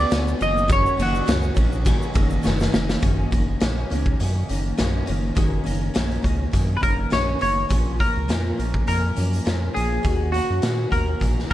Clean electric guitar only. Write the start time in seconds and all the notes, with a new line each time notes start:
Already playing: D5
0.42 D#5
0.72 C#5
1.02 F#4
6.77 B4
6.83 A#4
7.13 C#5
7.42 C#5
8.00 A#4
8.88 A#4
9.74 G#4
10.32 F#4
10.92 A#4